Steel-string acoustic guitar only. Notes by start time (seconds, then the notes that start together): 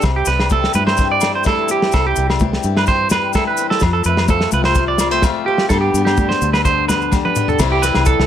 Already playing: G4
0.02 C3
0.28 G3
0.52 E3 C4
0.76 G4
0.99 G2 C4
1.25 G3
1.45 E3 E4
1.69 C4
1.93 C3
2.18 G3
2.41 E3 C4
2.65 G4
2.90 G2 C4
3.12 G3
3.37 E3 E4
3.60 C4
3.83 F2
4.07 A3
4.29 F3 C4
4.53 F4
4.76 C3 C4
5.00 G3
5.11 A3
5.24 F3 F4
5.48 C4
5.71 G2 D3 B3 D4 G4
5.97 B3
6.20 D3 D4
6.43 A4
6.65 G2 D4
6.89 B3
7.13 D3 G4
7.37 D4
7.60 C3 E3 G3 C4 E4
7.84 E3
8.08 G3